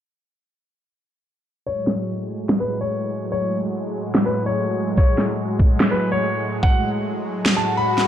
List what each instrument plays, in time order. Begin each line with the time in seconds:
1.66 supersaw synth A2 F#3 G#3, grand piano C#5
1.87 snare
2.49 snare
2.60 grand piano B4
2.81 grand piano C#5
3.32 grand piano C#5
4.15 snare
4.26 grand piano B4
4.46 grand piano C#5
4.97 grand piano C#5, kick
5.18 snare
5.59 kick
5.80 snare
5.91 grand piano B4
6.12 grand piano C#5
6.63 grand piano F#5, kick
7.46 snare, swell
7.57 grand piano A5
7.77 grand piano B5
7.98 snare